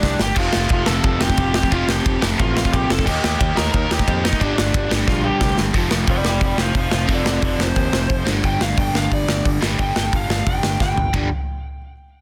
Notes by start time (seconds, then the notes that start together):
Already playing: G2 D3 G3 D4 D5
0.03 C2, kick, snare
0.19 G1 G4 G5, snare
0.36 F1 F2 C3 F3 F4 F5, kick, crash
0.53 F1, snare
0.69 F1 F4 F5, kick, ride
0.86 F1 C3 F3 A4 A5, snare
0.91 F2
1.04 F1 A4 A5, kick, ride
1.20 F1 G4 G5, snare
1.30 kick
1.37 F1, kick, ride
1.54 G4 G5, snare
1.63 kick
1.71 F1 F2 C3 F3 F4 F5, kick, ride
1.87 F1 G4 G5, snare
2.06 F1, kick, ride
2.21 F1 C3 F3, snare
2.25 F2
2.39 A1 F4 F5, kick, ride
2.57 F4 F5, snare
2.65 kick
2.72 A#1 G4 G5, kick, ride
2.90 F1 A4 A5, snare
2.99 kick
3.06 D#2 D#3 A#3 G4 G5, kick, crash
3.10 D#4
3.24 D#2 G4 G5, snare
3.39 D#2 G4 G5, kick, ride
3.56 D#2 D#3 A#3 D#4 A#4 A#5, snare
3.72 D#2 A#4 A#5, kick, ride
3.91 D#2 G4 G5, snare
3.99 kick
4.08 F2, kick, ride
4.24 D#4 D#5, snare
4.33 kick
4.40 G1 G2 D3 G3 D4 D5, kick, ride
4.57 G1 D4 D5, snare
4.74 G1, kick, ride
4.90 G1 G2 D3 G3, snare
5.07 A#1 F4 F5, kick, snare
5.24 G4 G5
5.41 C2, kick, snare
5.58 G1, snare
5.73 F1 F2 C3 F3, kick, open hi-hat
5.91 F1, snare
6.07 F1 D5 G5, kick, open hi-hat
6.25 F1 D5 G5, snare
6.41 F1 D5 G5, kick, open hi-hat
6.58 F1 C5 F5, snare
6.75 F1 C5 F5, kick, open hi-hat
6.91 F1 C5 F5, snare
7.07 F1 F2 C3 F3, kick, open hi-hat
7.12 A4 D5
7.25 F1 A4 D5, snare
7.42 F1 A4 D5, kick, open hi-hat
7.58 F1 C5, snare
7.76 D#2, kick, open hi-hat
7.93 F1, snare
8.10 F1, kick, open hi-hat
8.25 G1 G2 D3, snare
8.30 G3
8.44 G1 G5, kick, open hi-hat
8.60 G1 F5, snare
8.78 G1 G5, kick, open hi-hat
8.94 G1 F5, snare
9.11 G1 D5, kick, open hi-hat
9.28 G1, snare
9.45 G1, kick, open hi-hat
9.61 G1 G2 D3, snare
9.65 G3
9.79 G1 G5, kick, open hi-hat
9.95 G1 G5, snare
10.13 G1 F5, kick, open hi-hat
10.29 G1, snare
10.46 F1 G5, kick, open hi-hat
10.63 G1, snare
10.80 G1 G5, kick, snare
10.96 G1, floor tom
11.14 G1 G2 D3 G3, kick, floor tom, ride bell